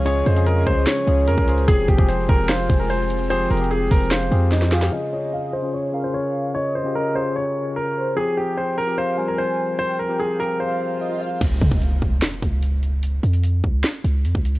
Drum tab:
CC |------------------------------------------------|------------------------------------------------|------------------------------------------------|------------------------------------------------|
HH |x-----x--x--x-----------x-----x-----x-----x--x--|x-----x-----x-----------x-----x-----x-----x-----|x-----x-x-x-x-----o-----x-----x-----x-----x--x--|------------------------------------------------|
CP |------------------------x-----------------------|------------------------x-----------------------|------------------------x-----------------------|------------------------------------------------|
SD |------------------------o-----------------------|------------------------o-----------------------|------------------------o-----------o--o--o--o--|------------------------------------------------|
BD |------------------o--------------------o--------|o-----o--o--------o-----------o-----------------|------------------o-----------------------------|------------------------------------------------|

CC |------------------------------------------------|------------------------------------------------|------------------------------------------------|x-----------------------------------------------|
HH |------------------------------------------------|------------------------------------------------|------------------------------------------------|x-----x-----x-----------x-----x-----x-----x-----|
CP |------------------------------------------------|------------------------------------------------|------------------------------------------------|------------------------x-----------------------|
SD |------------------------------------------------|------------------------------------------------|------------------------------------------------|------------------------o-----------------------|
BD |------------------------------------------------|------------------------------------------------|------------------------------------------------|o-----o--o--------o-----------o-----------------|

CC |------------------------------------------------|
HH |x-----x--x--x-----------x-----x-----x-----x--x--|
CP |------------------------x-----------------------|
SD |------------------------o-----------------------|
BD |------------------o--------------------o--------|